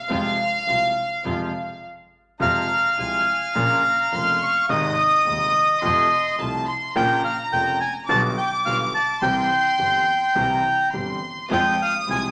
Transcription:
0.00 1.81 F5 medium
0.10 0.34 F2 medium
0.10 0.34 C3 medium
0.10 0.34 F3 medium
0.10 0.34 G#3 medium
0.10 0.34 C4 medium
0.10 0.34 F4 medium
0.67 0.91 C2 medium
0.67 0.91 C3 medium
0.67 0.91 F3 soft
0.67 0.91 G#3 soft
0.67 0.91 C4 soft
0.67 0.91 F4 soft
0.67 0.91 F4 medium
1.24 1.49 F2 medium
1.24 1.49 C3 medium
1.24 1.49 F3 medium
1.24 1.48 G#3 medium
1.24 1.49 G#3 medium
1.24 1.48 C4 medium
1.24 1.48 F4 medium
1.24 1.49 F4 medium
2.40 2.64 F2 medium
2.40 2.64 C3 medium
2.40 2.64 F3 medium
2.40 2.64 G#3 medium
2.40 2.64 F4 medium
2.40 4.66 F5 loud
2.40 2.93 A#5 medium
2.97 3.22 C2 medium
2.97 3.22 C3 medium
2.97 3.22 F3 soft
2.97 3.22 G#3 soft
2.97 3.22 F4 medium
2.97 3.55 G#5 medium
3.54 3.79 A#1 medium
3.54 3.79 A#1 loud
3.54 3.79 A#2 medium
3.54 3.79 C#3 medium
3.54 3.79 F3 medium
3.54 3.79 A#3 medium
3.54 3.79 F4 medium
3.54 4.11 A#5 loud
4.12 4.36 F1 medium
4.12 4.36 F2 medium
4.12 4.36 C#3 soft
4.12 4.36 F3 soft
4.12 4.36 A#3 soft
4.12 4.36 F4 medium
4.12 4.41 C6 loud
4.42 4.69 C#6 loud
4.69 4.93 G#1 medium
4.69 4.93 G#2 medium
4.69 4.93 C3 medium
4.69 4.93 D#3 medium
4.69 4.93 G#3 medium
4.69 4.93 D#4 medium
4.69 6.35 D#5 loud
4.69 5.83 D#6 loud
5.25 5.49 D#1 medium
5.25 5.49 D#2 medium
5.25 5.50 D#2 medium
5.25 5.49 C3 medium
5.25 5.49 D#3 soft
5.25 5.49 G#3 soft
5.25 5.49 D#4 medium
5.82 6.06 F2 medium
5.82 6.06 F2 loud
5.82 6.06 C3 medium
5.82 6.06 F3 medium
5.82 6.06 A3 medium
5.82 6.06 F4 medium
5.82 6.39 C6 loud
6.38 6.63 C2 medium
6.38 6.62 C3 medium
6.38 6.62 F3 soft
6.38 6.62 A3 soft
6.38 6.63 F4 medium
6.38 6.67 A5 loud
6.66 6.95 C6 loud
6.94 7.19 A#1 medium
6.94 7.19 A#1 loud
6.94 7.19 A#2 loud
6.94 7.19 C#3 medium
6.94 7.19 F3 medium
6.94 7.19 A#3 medium
6.94 7.20 F4 medium
6.94 7.22 G5 loud
6.94 8.08 A#5 loud
7.25 7.37 F5 medium
7.52 7.76 F1 medium
7.52 7.76 F2 medium
7.52 7.76 C#3 medium
7.52 7.76 F3 soft
7.52 7.76 A#3 soft
7.52 7.76 F4 medium
7.52 7.79 G5 loud
7.81 7.93 G#5 loud
8.08 8.32 B1 medium
8.08 8.33 B1 loud
8.08 8.33 B2 medium
8.08 8.33 D3 medium
8.08 8.33 G3 medium
8.08 8.33 B3 medium
8.08 8.33 F4 medium
8.08 8.22 A5 loud
8.08 9.17 D6 loud
8.38 8.50 G5 medium
8.65 8.89 B1 medium
8.65 8.90 B1 medium
8.65 8.90 B2 medium
8.65 8.89 D3 medium
8.65 8.90 G3 soft
8.65 8.90 B3 soft
8.65 8.90 F4 medium
8.65 8.78 F5 medium
8.95 9.23 A5 medium
9.21 9.46 C2 medium
9.21 9.46 C3 medium
9.21 9.45 E3 medium
9.21 9.46 G3 medium
9.21 9.46 C4 medium
9.21 9.46 G4 medium
9.21 10.89 G5 loud
9.21 10.35 C6 loud
9.79 10.03 G1 medium
9.79 10.03 G2 medium
9.79 10.03 E3 soft
9.79 10.03 G3 soft
9.79 10.02 C4 soft
9.79 10.03 G4 medium
10.35 10.59 C2 medium
10.35 10.59 C3 medium
10.35 10.59 E3 medium
10.35 10.59 G3 medium
10.35 10.59 C4 medium
10.35 10.59 G4 medium
10.35 10.93 A#5 loud
10.93 11.17 G1 medium
10.93 11.17 G2 medium
10.93 11.17 E3 medium
10.93 11.17 G3 soft
10.93 11.17 C4 soft
10.93 11.17 G4 medium
10.93 11.50 C6 medium
11.50 11.74 F2 medium
11.50 11.75 F2 medium
11.50 11.74 F3 medium
11.50 11.74 G#3 medium
11.50 11.74 C4 medium
11.50 11.74 F4 medium
11.50 11.75 G#4 medium
11.50 11.81 G5 loud
11.50 12.31 D#6 loud
11.82 11.94 F5 medium
12.07 12.31 C2 medium
12.07 12.31 C3 medium
12.07 12.31 F3 soft
12.07 12.31 G#3 medium
12.07 12.31 G#3 soft
12.07 12.31 C4 soft
12.07 12.31 F4 medium
12.07 12.31 G#4 medium
12.07 12.23 G#5 loud

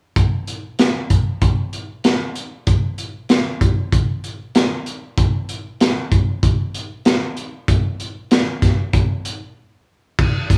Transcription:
0.16 kick loud
0.16 closed hi-hat medium
0.47 closed hi-hat medium
0.79 snare medium
0.79 closed hi-hat medium
1.10 kick medium
1.10 closed hi-hat medium
1.42 kick medium
1.42 closed hi-hat medium
1.73 closed hi-hat medium
2.04 snare medium
2.04 closed hi-hat medium
2.36 closed hi-hat medium
2.67 kick medium
2.67 closed hi-hat medium
2.98 closed hi-hat soft
3.29 snare medium
3.29 closed hi-hat medium
3.61 kick medium
3.61 closed hi-hat medium
3.92 kick medium
3.92 closed hi-hat medium
4.24 closed hi-hat soft
4.55 snare medium
4.55 closed hi-hat medium
4.86 closed hi-hat soft
5.18 kick loud
5.18 closed hi-hat medium
5.49 closed hi-hat medium
5.81 snare medium
5.81 closed hi-hat medium
6.12 kick medium
6.12 closed hi-hat medium
6.43 kick medium
6.43 closed hi-hat medium
6.74 closed hi-hat medium
7.05 snare medium
7.05 closed hi-hat medium
7.37 closed hi-hat medium
7.68 kick medium
7.68 closed hi-hat medium
8.00 closed hi-hat soft
8.31 snare medium
8.31 closed hi-hat medium
8.62 kick medium
8.62 snare soft
8.62 closed hi-hat medium
8.93 kick medium
8.93 closed hi-hat medium
9.25 closed hi-hat medium
10.19 kick loud
10.19 crash medium
10.50 kick medium
10.50 closed hi-hat medium

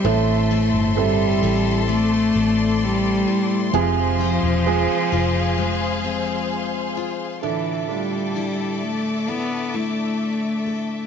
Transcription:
0.00 0.14 G3 medium
0.00 0.50 C4 soft
0.00 0.51 E4 medium
0.00 1.85 E5 medium
0.00 7.38 C6 medium
0.04 0.70 A1 loud
0.04 3.74 A2 medium
0.04 0.92 A3 medium
0.04 0.98 A3 medium
0.04 0.92 C4 medium
0.04 0.93 E4 medium
0.04 0.93 A4 medium
0.04 3.71 A4 medium
0.51 1.42 C4 medium
0.51 1.42 E4 medium
0.51 1.43 A4 medium
0.74 1.39 G1 medium
0.96 1.86 G3 medium
0.96 2.72 A3 medium
0.96 2.72 C4 medium
0.96 2.72 E4 medium
0.96 2.73 A4 medium
1.43 2.31 A1 medium
1.43 2.35 C4 medium
1.43 3.26 E4 medium
1.43 3.84 A4 medium
1.88 3.83 A3 medium
1.88 2.85 A3 loud
1.88 3.72 D5 medium
2.35 3.24 A1 medium
2.35 4.19 C4 medium
2.84 3.75 G3 medium
3.27 3.83 E4 medium
3.73 4.39 F1 medium
3.73 5.08 C3 medium
3.73 7.43 F3 medium
3.73 6.48 F3 medium
3.73 4.61 G#3 medium
3.73 4.61 C4 medium
3.73 4.62 F4 medium
3.73 7.40 G#4 medium
3.73 4.62 G#4 medium
3.73 7.40 C5 medium
3.73 7.40 F5 medium
4.20 5.11 C4 soft
4.20 5.12 F4 medium
4.20 5.12 C5 medium
4.43 4.86 E1 medium
4.66 6.41 G#3 medium
4.66 6.42 C4 medium
4.66 6.42 F4 medium
4.66 6.42 G#4 medium
5.12 7.39 F1 medium
5.12 6.03 C4 soft
5.12 6.97 F4 medium
5.12 7.53 C5 medium
5.58 7.52 G#3 medium
6.05 7.52 C4 soft
6.97 8.36 F4 soft
7.42 8.77 A2 soft
7.42 11.07 D3 medium
7.42 7.87 E3 medium
7.42 7.86 A3 soft
7.42 7.87 D4 soft
7.42 7.87 E4 soft
7.42 11.07 A4 medium
7.42 7.87 A4 medium
7.42 11.07 D5 medium
7.42 11.07 E5 medium
7.42 11.07 D6 medium
7.89 8.84 G3 medium
7.89 9.64 A3 medium
7.89 9.64 D4 soft
7.89 9.65 E4 soft
7.89 9.65 F4 medium
8.35 9.27 D4 soft
8.35 9.28 E4 soft
8.35 9.28 A4 soft
8.83 9.31 A3 medium
9.28 9.77 B3 medium
9.28 11.07 D4 soft
9.28 9.73 E4 soft
9.28 10.65 A4 soft
9.74 11.07 A3 medium
9.74 11.07 E4 soft
10.66 11.07 A4 soft

